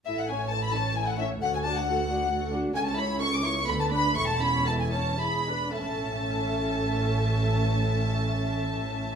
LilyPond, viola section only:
\new Staff \with { instrumentName = "Viola section" } { \time 3/4 \key a \major \tempo 4 = 121 <e' a'>8 <cis' cis''>8 <e' a'>8 <cis' cis''>8 <e' a'>8 <cis' cis''>8 | <fis' a'>8 <d' fis'>8 <fis' a'>8 <d' fis'>8 <fis' a'>8 <d' fis'>8 | <cis' a'>8 <e' cis''>8 <cis' a'>8 <e' cis''>8 <b a'>8 <d' b'>8 | <e' a'>8 <cis' cis''>8 <e' a'>8 <cis' cis''>8 <e' gis'>8 <d' b'>8 |
<cis' a'>2.~ | <cis' a'>2. | }